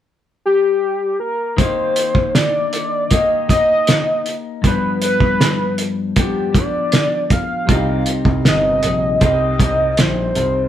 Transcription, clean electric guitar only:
1.57 D#3 A#3
1.61 D#4 G4
3.10 D#3 A#3 D#4
3.14 G4
3.49 A#3 D#4 G4
4.62 G2 F3
4.66 B3 D4
6.16 G2 F3 B3 D4
6.53 B3 D4
6.57 F3
7.67 C3 C4
7.72 D#4 G4
9.20 C3 C4 D#4 G4
9.58 D#4 G4
9.62 C4

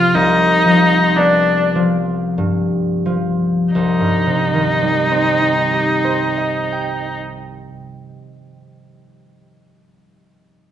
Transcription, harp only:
Already playing: C2 C3 F3 C4
0.15 C2
0.65 F3
1.18 B3
1.75 F3
2.38 G2
3.06 F3
3.75 C2
4.00 G2
4.26 C3
4.53 D#3
4.82 G3
5.11 C4
5.41 D#4
5.72 G4
6.04 C5
6.38 D#5
6.72 G5

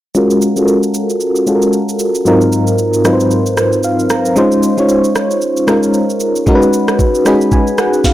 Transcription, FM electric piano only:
0.15 G#3 C#4 F4 F#4 A#4
0.56 G#3 C#4 F4 F#4 A4
0.65 A#4
1.46 G#3 C#4 F4 F#4 A4
1.55 A#4
2.25 G#2 F#3 C4 D#4 F4 A#4
3.04 G#2 F#3 C4 D#4 F4 B4
3.13 C5
3.84 F5
4.11 A#5
4.36 G#3 C#4 D#4 F4 C5
4.77 G#3 C#4 D#4 F4 C#5
5.67 G#3 C#4 D#4 F4 A#4
6.46 G#3 C#4 D#4 F#4 A#4
6.55 B4
7.25 G#3 C#4 D#4 F#4 G#4 B5
7.53 G#5
7.79 F#5
8.05 F5

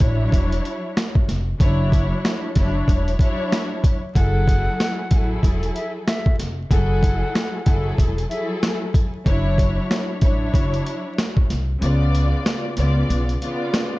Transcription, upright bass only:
0.01 A1
0.33 E1
1.28 F1
1.60 F#1
2.56 F#1
2.88 E1
4.16 F#1
5.11 A1
5.43 E1
6.39 F1
6.71 F#1
7.67 F#1
7.99 E1
9.26 F#1
10.22 A1
10.54 F#1
11.50 C2
11.82 C#2
12.77 C#2
13.09 B1

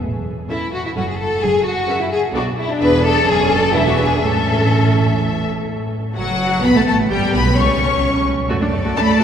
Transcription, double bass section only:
0.02 A1
0.96 F#1
1.43 F#1
2.34 B1
2.80 E1
3.27 F#1
3.74 E1
4.23 A1
6.16 F#1
6.63 B1
6.75 A1
6.87 A1
7.10 G1
7.33 B1
7.57 C#2
8.50 F#2
8.62 F#2
8.73 F#2
8.85 F#2
8.97 F#2
9.08 F#2
9.20 F#2

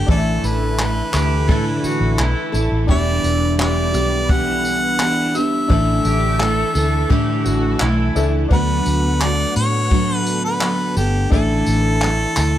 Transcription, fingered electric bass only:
0.09 A1
0.43 A1
1.14 D2
1.49 A2
1.84 muted fingered electric bass stroke
2.01 A1
2.19 B1
2.54 A1
2.72 A1
2.89 E1
3.24 E1
3.94 B1
5.35 G1
5.70 A1
6.05 A1
6.75 D2
7.11 A2
7.46 A1
7.81 B1
8.16 C#2
8.51 D2
8.87 D2
9.56 A2
10.97 G1
11.32 A1
11.67 A1
12.37 D2

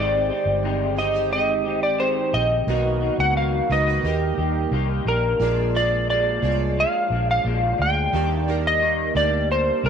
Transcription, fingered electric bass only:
Already playing: G#1
0.45 G1
2.33 A#1
2.67 B1
3.18 C#2
3.69 C#2
4.03 D#2
4.38 D#2
4.71 C2
5.05 A#1
5.40 A#1
6.42 C2
7.10 A#1
7.45 A#1
7.79 D2
8.13 D#2
9.15 D2
9.84 C2

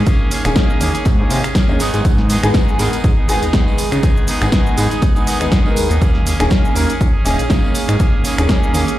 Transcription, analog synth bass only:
0.45 D#1
0.81 D#2
1.06 G#2
1.31 C3
1.69 D#2
1.80 G#2
1.94 G#2
2.05 G#2
2.43 G#1
2.79 G#2
3.04 G#2
3.29 G#1
3.43 D#2
3.54 D#2
3.92 C#3
4.42 G#1
4.78 G#2
5.41 D#2
5.52 D#2
5.77 D#2
5.90 D#2
6.02 D#2
6.40 D#1
6.76 D#2
7.01 D#2
7.25 D#1
7.39 A#1
7.50 A#1
7.89 G#2
8.38 D#1
8.74 D#2

